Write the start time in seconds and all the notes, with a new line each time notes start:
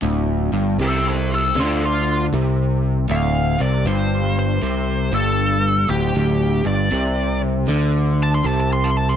0.02 D1 D2
0.52 G1 G2
0.78 C2 C3 A4
0.83 C5
1.09 A4 C5
1.34 F4 A4
1.55 D2 D3
1.60 F4 A4
1.86 F4
2.33 C2 C3
3.09 D1 D2 F5
3.59 C2 C3 D5
3.85 G1 G2 C5
4.39 C5
4.62 C2 C3
5.11 G1 G2 A4
5.89 D1 D2 G4
6.14 D1 D2
6.65 G1 G2 D5
6.91 C2 C3
7.67 D2 D3
8.23 A5
8.34 C6
8.44 C2 C3 A5
8.60 A5
8.73 C6
8.84 A5
8.97 A5
9.09 C6